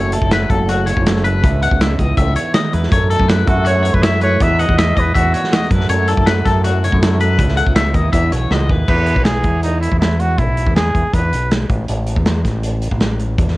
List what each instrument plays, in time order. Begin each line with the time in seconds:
Already playing: fingered electric bass F#1, clean electric guitar F#2 E3 A3 A4 C#5
0.12 clean electric guitar E4 A4, closed hi-hat
0.21 fingered electric bass F#1, kick
0.31 clean electric guitar F#3 A4 B4, snare, closed hi-hat
0.49 fingered electric bass F#1, clean electric guitar A3 A4, kick, closed hi-hat
0.69 clean electric guitar F#4, closed hi-hat
0.86 clean electric guitar C#3 E4 C#5, closed hi-hat
0.96 fingered electric bass F#1, kick
1.06 clean electric guitar A4, snare, closed hi-hat
1.16 snare
1.24 clean electric guitar F#2 A4 B4, closed hi-hat
1.42 fingered electric bass C#2, clean electric guitar C#3 E4, kick, closed hi-hat
1.62 clean electric guitar B3 F#5, closed hi-hat
1.71 fingered electric bass C#2, kick
1.81 clean electric guitar D#4 E5, snare, closed hi-hat
1.99 fingered electric bass C#2, clean electric guitar E3 E4 D#5, kick, closed hi-hat
2.17 fingered electric bass C#2, clean electric guitar A3 E5, kick, closed hi-hat
2.28 clean electric guitar B3
2.36 clean electric guitar C#5, closed hi-hat
2.54 clean electric guitar D#3 D#5, snare, closed hi-hat
2.72 fingered electric bass E2, clean electric guitar E3 B4, closed hi-hat
2.83 snare
2.91 clean electric guitar F#2 A4 C#5, fingered electric bass F#2, kick, closed hi-hat
3.09 clean electric guitar A3 A4, closed hi-hat
3.20 fingered electric bass F#2, kick
3.28 clean electric guitar E4 B4, snare, closed hi-hat
3.45 clean electric guitar F#2 E4 A4, fingered electric bass F#2, trumpet F#4, kick, closed hi-hat
3.65 clean electric guitar A3 F#4, trumpet C#5, closed hi-hat
3.83 clean electric guitar B3 C#5, closed hi-hat
3.92 fingered electric bass F#2, clean electric guitar C#4, trumpet B4, kick
4.01 clean electric guitar E3 E4, trumpet E5, snare, closed hi-hat
4.21 clean electric guitar A3 B4, trumpet C#5, closed hi-hat
4.39 clean electric guitar E2 E3 B3 D#4 G#4, fingered electric bass E2, trumpet E5, kick, closed hi-hat
4.59 clean electric guitar B3 F#5, trumpet D#5, closed hi-hat
4.69 fingered electric bass E2, kick
4.78 clean electric guitar D#4 E5, snare, closed hi-hat
4.95 fingered electric bass E2, clean electric guitar E3 G#4 D#5, trumpet B4, kick, closed hi-hat
5.14 fingered electric bass E2, clean electric guitar B3 E5, trumpet F#4, kick, closed hi-hat
5.33 clean electric guitar C#5, closed hi-hat
5.44 snare
5.53 clean electric guitar E2 D#5, snare, closed hi-hat
5.62 snare
5.71 fingered electric bass F#2, clean electric guitar F#2 F#3 A3 E4 B4, kick, closed hi-hat
5.75 clean electric guitar A4
5.81 snare
5.89 fingered electric bass F#2, clean electric guitar A3 C#5, closed hi-hat
6.08 clean electric guitar E4 A4, closed hi-hat
6.17 fingered electric bass F#2, kick
6.26 clean electric guitar F#3 A4 B4, snare, closed hi-hat
6.45 fingered electric bass F#2, clean electric guitar A3 A4, kick, snare, closed hi-hat
6.64 clean electric guitar F#4, closed hi-hat
6.84 clean electric guitar C#3 E4 C#5, closed hi-hat
6.93 fingered electric bass F#2, kick
7.02 clean electric guitar A4, snare, closed hi-hat
7.19 clean electric guitar F#2 A4 B4, closed hi-hat
7.38 fingered electric bass C#2, clean electric guitar C#3 E4, kick, closed hi-hat
7.49 snare
7.57 clean electric guitar A3 F#5, closed hi-hat
7.66 fingered electric bass C#2, clean electric guitar B3, kick
7.76 clean electric guitar D#4 E5, snare, closed hi-hat
7.93 fingered electric bass D#2, clean electric guitar E3 E4 D#5, kick, closed hi-hat
8.13 clean electric guitar E2 G#4 E5, fingered electric bass E2, kick, closed hi-hat
8.31 fingered electric bass B1, clean electric guitar B3 C#5, closed hi-hat
8.51 fingered electric bass C#2, clean electric guitar D#4 D#5, snare
8.70 fingered electric bass D#2, clean electric guitar E3 G#4 B4, kick
8.88 fingered electric bass E2, trumpet B4, kick, crash
9.07 closed hi-hat
9.16 fingered electric bass B1, kick
9.24 trumpet G#4, snare, closed hi-hat
9.44 fingered electric bass E2, kick, closed hi-hat
9.63 trumpet D#4, closed hi-hat
9.81 trumpet E4, closed hi-hat
9.92 fingered electric bass E2, kick
9.99 trumpet E4, snare, closed hi-hat
10.20 trumpet F#4, closed hi-hat
10.38 fingered electric bass B1, trumpet E4, kick, closed hi-hat
10.57 closed hi-hat
10.67 fingered electric bass E2, kick
10.76 trumpet G#4, snare, closed hi-hat
10.95 fingered electric bass E2, kick, closed hi-hat
11.13 fingered electric bass E2, trumpet B4, kick, closed hi-hat
11.33 fingered electric bass B1, closed hi-hat
11.51 snare, closed hi-hat
11.69 fingered electric bass A1, kick, closed hi-hat
11.88 fingered electric bass A1, closed hi-hat
12.06 closed hi-hat
12.16 fingered electric bass E2, kick
12.26 snare, closed hi-hat
12.45 fingered electric bass A1, kick, snare, closed hi-hat
12.63 closed hi-hat
12.82 closed hi-hat
12.91 fingered electric bass A1, kick
13.00 snare, closed hi-hat
13.19 closed hi-hat
13.38 fingered electric bass E2, kick, closed hi-hat
13.48 snare